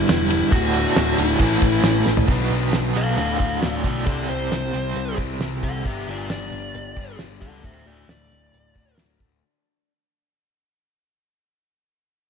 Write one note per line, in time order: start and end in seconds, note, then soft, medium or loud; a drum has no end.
0.00 0.50 G2 medium
0.00 0.50 D3 medium
0.00 0.50 G3 medium
0.00 0.51 G3 loud
0.00 0.51 B3 medium
0.00 0.51 B3 loud
0.00 0.50 D4 medium
0.00 0.51 D4 loud
0.00 0.28 E4 loud
0.00 0.51 G4 medium
0.00 0.52 G4 loud
0.08 0.41 E1 medium
0.08 0.19 G2 medium
0.08 0.19 D3 medium
0.08 0.20 G3 medium
0.08 0.20 B3 medium
0.08 0.20 D4 medium
0.08 0.18 G4 medium
0.08 snare loud
0.08 ride loud
0.19 0.42 G3 soft
0.19 0.41 B3 soft
0.19 0.41 D4 medium
0.19 0.40 G4 medium
0.30 0.52 E4 medium
0.30 ride medium
0.41 0.52 G3 soft
0.41 0.53 B3 medium
0.41 0.52 D4 medium
0.41 0.52 G4 medium
0.51 0.85 D1 medium
0.51 1.38 D2 medium
0.51 1.37 A2 medium
0.51 1.39 D3 loud
0.51 0.85 D3 medium
0.51 1.40 F#3 medium
0.51 1.39 A3 medium
0.51 1.39 A3 loud
0.51 0.86 A3 medium
0.51 1.40 D4 medium
0.51 0.86 D4 medium
0.51 1.20 F#4 loud
0.51 1.40 F#4 medium
0.51 1.40 F#4 loud
0.51 0.85 F#4 medium
0.51 kick loud
0.51 ride loud
0.74 ride medium
0.86 0.97 A3 soft
0.86 0.97 D4 medium
0.86 0.97 F#4 medium
0.96 1.13 D1 loud
0.96 1.18 D3 medium
0.96 1.18 A3 medium
0.96 1.19 D4 medium
0.96 1.19 F#4 medium
0.96 snare loud
0.96 ride loud
1.18 1.34 D1 medium
1.18 1.30 D3 soft
1.18 1.30 A3 medium
1.18 1.30 D4 medium
1.18 2.03 E4 medium
1.18 1.30 F#4 medium
1.18 ride medium
1.31 1.40 A3 soft
1.31 1.40 D4 soft
1.31 1.41 F#4 medium
1.38 1.56 A1 medium
1.38 2.26 A2 medium
1.38 1.51 A2 medium
1.38 2.27 E3 loud
1.38 1.51 E3 medium
1.38 2.28 E3 medium
1.38 2.27 A3 medium
1.38 2.28 A3 medium
1.38 1.51 A3 medium
1.38 1.51 C#4 medium
1.38 2.27 C#4 medium
1.38 2.28 C#4 medium
1.38 2.27 E4 medium
1.38 2.28 E4 loud
1.38 1.51 E4 medium
1.38 2.28 A4 loud
1.38 kick medium
1.38 ride loud
1.52 1.63 A3 soft
1.52 1.63 C#4 medium
1.52 1.63 E4 medium
1.62 1.78 A1 medium
1.62 1.85 E3 medium
1.62 1.85 A3 medium
1.62 1.85 C#4 medium
1.62 1.86 E4 medium
1.62 kick medium
1.62 ride medium
1.84 2.00 A1 medium
1.84 1.96 A2 medium
1.84 1.97 E3 medium
1.84 1.97 A3 medium
1.84 1.96 C#4 medium
1.84 snare loud
1.84 ride loud
1.88 1.95 E4 loud
1.99 2.18 A3 medium
2.06 2.23 A1 medium
2.06 snare medium
2.17 2.29 A3 medium
2.17 2.29 C#4 medium
2.17 2.29 E4 medium
2.17 floor tom medium
2.27 2.48 B1 medium
2.27 3.15 B2 medium
2.27 3.16 F#3 medium
2.27 3.16 B3 medium
2.27 3.16 D4 medium
2.27 3.17 F#4 medium
2.27 3.17 B4 medium
2.27 kick loud
2.27 closed hi-hat medium
2.50 2.70 B1 medium
2.50 closed hi-hat medium
2.73 2.93 B1 medium
2.73 snare loud
2.73 closed hi-hat medium
2.94 3.15 B1 medium
2.94 3.16 F#3 medium
2.94 3.15 B3 medium
2.94 3.16 A4 medium
2.94 3.16 F5 medium
2.94 closed hi-hat medium
2.98 3.16 B2 medium
3.16 3.37 D1 medium
3.16 4.04 D2 medium
3.16 4.05 A2 medium
3.16 4.05 D3 medium
3.16 4.06 A3 loud
3.16 4.06 F#4 loud
3.16 3.36 A4 medium
3.16 3.38 F5 medium
3.16 closed hi-hat medium
3.38 3.59 D1 medium
3.38 3.59 A4 medium
3.38 3.61 F5 medium
3.38 kick medium
3.38 closed hi-hat medium
3.61 3.82 D1 medium
3.61 3.82 F#4 medium
3.61 3.83 D5 medium
3.61 snare loud
3.61 closed hi-hat medium
3.84 4.04 B1 medium
3.84 4.06 D2 medium
3.84 4.06 A2 medium
3.84 4.05 D3 medium
3.84 4.05 F#4 medium
3.84 4.06 D5 medium
3.84 kick medium
3.84 closed hi-hat medium
4.05 4.26 C2 medium
4.05 5.16 C3 medium
4.05 5.16 G3 medium
4.05 5.17 C4 medium
4.05 5.17 E4 medium
4.05 5.16 G4 medium
4.05 4.27 A4 medium
4.05 5.15 C5 medium
4.05 4.28 D5 medium
4.05 kick loud
4.05 closed hi-hat medium
4.29 4.49 C2 medium
4.29 5.15 C5 medium
4.29 closed hi-hat medium
4.52 4.71 C2 medium
4.52 snare loud
4.52 closed hi-hat medium
4.73 4.93 C2 medium
4.73 5.84 G3 medium
4.73 5.83 C4 medium
4.73 closed hi-hat medium
4.77 5.85 C3 medium
4.95 5.15 C2 medium
4.95 closed hi-hat medium
5.16 5.38 C2 medium
5.16 5.38 C3 medium
5.16 5.39 G3 medium
5.16 5.39 C4 medium
5.16 5.39 E4 medium
5.16 5.38 G4 medium
5.16 5.38 C5 medium
5.16 kick medium
5.16 closed hi-hat medium
5.39 5.60 C2 medium
5.39 5.82 C3 medium
5.39 5.83 G3 medium
5.39 5.84 C4 medium
5.39 5.84 E4 medium
5.39 5.84 G4 medium
5.39 5.85 C5 medium
5.39 snare loud
5.39 closed hi-hat medium
5.63 5.82 C2 medium
5.63 5.85 A4 medium
5.63 5.85 F#5 medium
5.63 kick medium
5.63 closed hi-hat medium
5.83 6.05 G1 medium
5.83 6.94 G2 medium
5.83 6.95 D3 medium
5.83 6.95 G3 medium
5.83 6.95 B3 medium
5.83 6.97 D4 medium
5.83 6.06 G4 medium
5.83 6.95 G4 medium
5.83 6.07 E5 medium
5.83 kick loud
5.83 closed hi-hat medium
6.08 6.27 G1 medium
6.08 6.29 F4 medium
6.08 6.30 D5 medium
6.08 closed hi-hat soft
6.30 6.50 G1 medium
6.30 7.17 D5 medium
6.30 snare loud
6.30 closed hi-hat medium
6.52 6.72 G1 medium
6.52 closed hi-hat medium
6.75 6.94 G1 medium
6.75 closed hi-hat medium
6.96 7.17 G1 medium
6.96 7.17 G2 medium
6.96 7.18 D3 medium
6.96 7.18 G3 medium
6.96 7.18 B3 medium
6.96 7.20 D4 medium
6.96 7.17 G4 medium
6.96 kick medium
6.96 closed hi-hat medium
7.18 7.39 G1 medium
7.18 7.62 G2 medium
7.18 7.62 D3 medium
7.18 7.63 G3 medium
7.18 7.63 B3 medium
7.18 9.92 D4 medium
7.18 7.64 G4 medium
7.18 snare medium
7.18 closed hi-hat medium
7.41 7.61 C#2 medium
7.41 7.64 A4 medium
7.41 7.63 F#5 medium
7.41 kick medium
7.41 closed hi-hat medium
7.63 7.84 D1 medium
7.63 8.74 D2 medium
7.63 8.74 A2 medium
7.63 8.75 D3 medium
7.63 8.74 A3 medium
7.63 8.73 F#4 medium
7.63 7.85 C5 medium
7.63 7.86 E5 medium
7.63 kick loud
7.63 closed hi-hat medium
7.86 8.06 D1 medium
7.86 8.07 F#4 medium
7.86 8.08 D5 medium
7.86 closed hi-hat medium
8.08 8.28 D1 medium
8.08 8.96 D5 medium
8.08 snare loud
8.08 closed hi-hat medium
8.31 8.51 D1 medium
8.31 closed hi-hat medium
8.53 8.73 D1 medium
8.53 closed hi-hat medium
8.74 8.96 D1 medium
8.74 8.95 D2 medium
8.74 8.96 A2 medium
8.74 8.96 D3 medium
8.74 8.97 A3 medium
8.74 8.96 F#4 medium
8.74 kick medium
8.74 closed hi-hat medium
8.96 9.18 D1 medium
8.96 9.40 D2 medium
8.96 9.41 A2 medium
8.96 9.41 D3 medium
8.96 9.42 A3 medium
8.96 9.42 F#4 medium
8.96 snare loud
8.96 closed hi-hat medium
9.20 9.40 D1 medium
9.20 kick medium
9.20 closed hi-hat medium